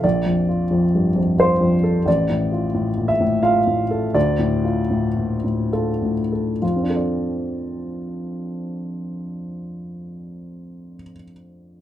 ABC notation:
X:1
M:3/4
L:1/8
Q:1/4=74
K:F
V:1 name="Upright piano"
d4 c2 | d3 e f2 | d4 A z | [F,,F,CDFAd]6- |
[F,,F,CDFAd]6 |]
V:2 name="Upright piano" clef=bass
(3B,,, F,, F (3F,, G,, F,, (3F F,, A | (3A,,, A,, F (3A,, B,, A,, (3F A,, A | (3D,, A,, F (3A,, B,, A,, (3F A,, A | z6 |
z6 |]